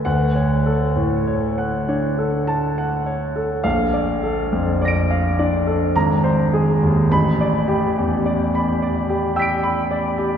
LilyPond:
<<
  \new Staff \with { instrumentName = "Grand piano" } { \time 3/4 \key d \lydian \tempo 4 = 52 << { r2 a''8 r8 | f''8 r8 <d''' bes''' d''''>4 ais''8 r8 | b''8 r4. <e''' b''' d''''>4 | } \\ { fis''16 cis''16 a'16 a,16 cis''16 fis''16 cis''16 a'8 fis''16 cis''16 a'16 | r16 d''16 a'16 f,16 d''16 f''16 d''16 a'16 r16 bis'16 gis'16 dis,16 | r16 d''16 g'16 e,16 d''16 b''16 d''16 g'16 g''16 b''16 d''16 g'16 | } >> }
  \new Staff \with { instrumentName = "Grand piano" } { \clef bass \time 3/4 \key d \lydian d,4. d'8 r4 | bes,,4. d'8 gis,,4 | a,,2. | }
>>